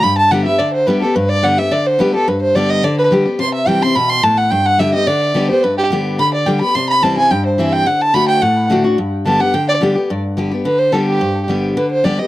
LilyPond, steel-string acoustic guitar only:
\new Staff \with { instrumentName = "Steel-string acoustic guitar" } { \time 4/4 \key g \major \tempo 4 = 215 << { r4 <d g b g'>8 <b g'>8 r4 <d g b g'>8 <b g'>8 | r4 <d g b g'>8 <b g'>8 r4 <d g b g'>8 <b g'>8 | r4 <d g b g'>4 r4 <d g b g'>8 <b g'>8 | r4 <e g c' e'>8 <c' e'>8 r2 |
r4 <d g b g'>8 <b g'>8 r4 <d g b g'>8 <b g'>8 | r4 <d g b g'>4 r4 <d g b g'>8 <b g'>8 | r4 <e g c' e'>8 <c' e'>8 r4 <e g c' e'>4 | r4 <d a d' fis'>4 r4 <d a d' fis'>8 <d' fis'>8 |
r4 <d g b g'>8 <b g'>8 r4 <d g b g'>8 <b g'>8 | r4 <d g b g'>8 <b g'>8 r4 <d g b g'>4 | r4 <d g b g'>4 r4 <d g b g'>8 <b g'>8 | } \\ { g,2 d2 | g,2 d2 | g,2 d2 | c2 b,4 a,4 |
g,2 d2 | g,2 d2 | c2 g,2 | d2 a,2 |
g,2 d2 | g,2 d2 | g,2 d2 | } >> }